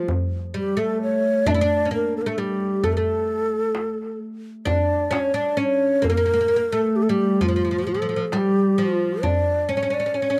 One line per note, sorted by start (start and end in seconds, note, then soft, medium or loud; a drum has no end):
0.08 darbuka dum medium
0.54 0.76 G3 medium
0.54 0.81 G4 medium
0.77 1.48 A3 medium
0.77 1.02 A4 medium
1.02 1.49 C#5 medium
1.46 1.54 D4 medium
1.46 1.52 E5 loud
1.46 darbuka dum medium
1.51 1.61 E4 medium
1.51 1.93 D5 loud
1.61 1.93 D4 medium
1.85 1.91 C#4 soft
1.91 2.26 A#3 medium
1.91 2.14 A#4 medium
2.17 2.23 A4 medium
2.22 2.29 A#4 medium
2.26 2.37 A3 medium
2.26 2.41 A4 medium
2.38 2.83 G3 medium
2.38 2.87 G4 medium
2.38 darbuka ka soft
2.60 darbuka ka soft
2.84 2.96 A3 medium
2.84 2.94 A4 medium
2.84 darbuka dum medium
2.93 3.00 A#4 medium
2.97 4.16 A3 medium
2.97 4.21 A4 loud
3.75 darbuka tek medium
4.65 5.10 D4 medium
4.65 5.15 D5 medium
4.65 darbuka dum loud
5.11 5.34 C#4 medium
5.11 5.38 C#5 loud
5.11 darbuka tek medium
5.34 5.57 D4 medium
5.34 5.61 D5 medium
5.57 6.04 C#4 medium
5.57 6.07 C#5 medium
6.02 6.09 A#3 medium
6.02 6.74 A#4 loud
6.02 darbuka dum medium
6.10 6.16 A#3 medium
6.17 6.24 A#3 medium
6.26 6.32 A#3 medium
6.34 6.40 A#3 medium
6.41 6.47 A#3 medium
6.48 6.55 A#3 medium
6.56 6.64 A#3 medium
6.72 7.09 A3 medium
6.72 6.98 A4 medium
6.96 7.04 G4 medium
6.96 darbuka ka soft
7.03 7.12 A4 medium
7.09 7.39 G3 medium
7.09 7.44 G4 medium
7.41 7.47 F3 medium
7.41 7.90 F4 medium
7.41 darbuka dum medium
7.48 7.55 F3 medium
7.56 7.64 F3 soft
7.65 7.70 F3 soft
7.71 7.77 F3 soft
7.78 7.86 F3 soft
7.87 7.93 F3 soft
7.87 8.28 A4 medium
7.94 8.01 F3 soft
8.02 8.08 F3 medium
8.09 8.15 F3 soft
8.16 8.24 F3 soft
8.28 8.34 A4 medium
8.32 8.80 G3 medium
8.32 8.38 A4 medium
8.32 darbuka tek medium
8.37 8.81 G4 medium
8.78 9.25 F3 medium
8.78 9.26 F4 medium
9.23 9.68 D4 medium
9.23 9.72 D5 medium
9.23 darbuka dum medium
9.69 9.76 C#4 medium
9.69 9.95 C#5 medium
9.77 9.81 C#4 medium
9.83 9.89 C#4 medium
9.90 9.98 C#4 medium
9.90 10.18 D5 medium
10.00 10.05 C#4 medium
10.06 10.13 C#4 soft
10.14 10.21 C#4 soft
10.14 10.40 C#5 medium
10.14 darbuka ka soft
10.22 10.29 C#4 soft
10.30 10.37 C#4 medium